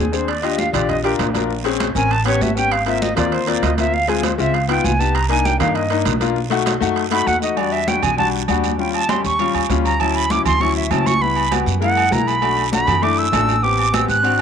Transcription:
Already playing: upright bass D#2, flute G#4
0.12 grand piano C4 D4 G#4, flute C5, high conga, short guiro
0.28 flute D5, high conga, high timbale, long guiro
0.42 grand piano D4 F4 G4, flute D#5, high conga, high timbale
0.59 flute F5, high conga, short guiro
0.73 upright bass A#1, grand piano D4 F4 G4, flute D5, high conga, low conga, high timbale, short guiro
0.89 flute D#5, high conga, low conga, high timbale, long guiro
1.03 grand piano D4 F4 A#4, flute G4, high conga, high timbale
1.19 upright bass A#1, high conga, high timbale, low timbale, short guiro
1.34 grand piano D4 F4 A#4, high conga, high timbale, short guiro
1.50 high conga, long guiro
1.64 grand piano C4 C#4 G#4, high conga, high timbale
1.80 high conga, high timbale, short guiro
1.95 upright bass A1, grand piano C4 C#4 A#4, flute G#5, high conga, short guiro
2.11 flute A5, high conga, high timbale, long guiro
2.25 grand piano B3 C#4 G4, flute C#5, high conga, high timbale
2.41 upright bass G#1, flute E5, high conga, short guiro
2.55 grand piano B3 C#4 G4, flute G5, high conga, short guiro
2.71 flute F5, high conga, high timbale, long guiro
2.86 grand piano A#3 C4 F4, flute E5, high conga, high timbale
3.02 flute D#5, high conga, short guiro
3.16 upright bass D#2, grand piano A#3 C4 F4, flute D5, high conga, low conga, high timbale, short guiro
3.32 flute C5, high conga, high timbale, long guiro
3.47 grand piano A#3 C4 F4, flute D5, high conga, high timbale
3.62 upright bass D2, flute D#5, high conga, high timbale, low timbale, short guiro
3.77 grand piano A#3 C4 F4, flute E5, high conga, high timbale, short guiro
3.93 flute F5, high conga, long guiro
4.08 grand piano G#3 C4 F4, flute G#4, high conga, high timbale
4.23 flute C5, high conga, high timbale, short guiro
4.38 upright bass C#2, grand piano G#3 C4 F4, flute E5, high conga, short guiro
4.54 flute F5, high conga, high timbale, long guiro
4.68 grand piano B3 D#4 F4, flute G5, high conga, high timbale
4.84 upright bass C2, flute G#5, high conga, short guiro
4.99 grand piano B3 D#4 G4, flute A5, high conga, short guiro
5.15 flute A#5, high conga, high timbale, long guiro
5.29 grand piano A#3 D4 D#4, flute G#5, high conga, high timbale
5.45 flute G5, high conga, short guiro
5.60 upright bass G2, grand piano A#3 D4 D#4, flute F5, high conga, low conga, high timbale, short guiro
5.75 flute D#5, high conga, high timbale, long guiro
5.90 grand piano A#3 D4 D#4, high conga, high timbale
6.05 upright bass B1, high conga, high timbale, short guiro
6.20 grand piano A#3 D4 F4, high conga, high timbale, short guiro
6.36 high conga, long guiro
6.50 grand piano A3 D#4 F#4, high conga, high timbale
6.66 high conga, high timbale, short guiro
6.80 upright bass F#2, grand piano A3 D#4 F#4, high conga, short guiro
6.96 high conga, high timbale, long guiro
7.11 grand piano A3 D#4 F#4, flute B5, high conga, high timbale
7.27 upright bass E2, flute F#5, high conga, short guiro
7.42 grand piano A3 D#4 F#4, flute D#5, high conga, short guiro
7.56 grand piano G3 D4 F#4, flute D5, high conga, low agogo, long guiro
7.72 flute E5, high conga, low agogo
7.87 grand piano G3 D4 F#4, flute G5, high conga, short guiro
8.03 upright bass B1, flute G#5, high conga, low conga, low agogo, short guiro
8.17 grand piano G3 D4 F#4, flute A5, high conga, low conga, low agogo, long guiro
8.33 high conga
8.48 upright bass D#2, grand piano G3 D4 F#4, high conga, low agogo, short guiro
8.63 high conga, low agogo, short guiro
8.78 grand piano G3 C#4 F4, flute G5, high conga, long guiro
8.94 flute A5, high conga, low agogo
9.08 grand piano G3 C#4 G4, flute C6, high conga, low agogo, short guiro
9.24 upright bass D#2, flute C#6, high conga, short guiro
9.39 grand piano G3 C#4 F4, high conga, low agogo, long guiro
9.54 upright bass D#2, high conga, low agogo
9.69 upright bass D2, grand piano G3 C#4 F4, high conga, low timbale, short guiro
9.85 flute A#5, low agogo, short guiro
10.00 grand piano F#3 C#4 E4, flute A5, high conga, low agogo, long guiro
10.15 flute B5, high conga, low agogo
10.30 grand piano F#3 C#4 E4, flute D6, high conga, short guiro
10.45 upright bass D2, flute C6, high conga, low conga, low agogo, short guiro
10.60 grand piano F#3 C#4 E4, flute C#6, high conga, low conga, low agogo, long guiro
10.76 flute E5, high conga
10.90 upright bass C#2, grand piano F#3 C#4 E4, flute A5, high conga, low timbale, low agogo, short guiro
11.06 flute C#6, high conga, low agogo, short guiro
11.20 grand piano G3 B3 E4, flute B5, high conga, long guiro
11.36 high conga, low agogo
11.50 grand piano G3 B3 F#4, high conga, low agogo, short guiro
11.66 upright bass F#2, high conga, short guiro
11.81 grand piano G#3 A#3 E4, flute F#5, high conga, low agogo, long guiro
11.97 high conga, low agogo
12.11 upright bass B1, grand piano G#3 A#3 E4, flute A#5, high conga, short guiro
12.27 flute B5, high conga, low agogo, short guiro
12.42 grand piano A3 D4 F#4, high conga, low agogo, long guiro
12.57 high conga, low agogo
12.72 grand piano A3 D4 F#4, flute B5, high conga, short guiro
12.87 upright bass F#2, high conga, low conga, low agogo, short guiro
13.02 grand piano A3 D4 E4, flute D6, high conga, low agogo, long guiro
13.18 flute E6, high conga
13.32 upright bass A1, grand piano A3 D4 A4, high conga, low timbale, low agogo, short guiro
13.48 high conga, low agogo, short guiro
13.62 grand piano B3 C4 G4, flute D6, high conga, long guiro
13.79 high conga, low agogo
13.93 grand piano B3 C4 G4, flute E6, high conga, low agogo, short guiro
14.08 upright bass G#1, flute F#6, high conga, short guiro
14.23 grand piano C4 D4 F#4, high conga, low agogo, long guiro

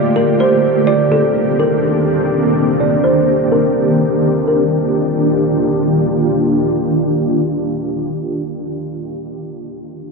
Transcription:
Already playing: ambient pad D3 A3 A#3 F4 G4, kalimba D5
0.16 kalimba A#4
0.40 kalimba C5
0.63 ambient pad D#3 A#3 C4 D4
0.87 kalimba D5
1.12 kalimba A4
1.60 kalimba A#4
2.80 kalimba D5
3.04 kalimba C5
3.52 kalimba A#4
4.48 ambient pad D#3 A#3 D4 F4 G4, kalimba A#4

